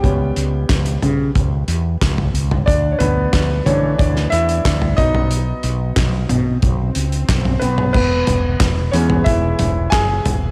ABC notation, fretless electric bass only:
X:1
M:4/4
L:1/8
Q:1/4=91
K:E
V:1 name="Fretless electric bass" clef=bass
C,, C,, C,, C, C,, E,, C,, C,, | =D,, D,, D,, =D, D,, E,, D,, B,,,- | B,,, B,,, B,,, B,, B,,, C,, B,,, B,,, | E,,, E,,, E,,, E,, E,,, E,,, F,,, D,,, |]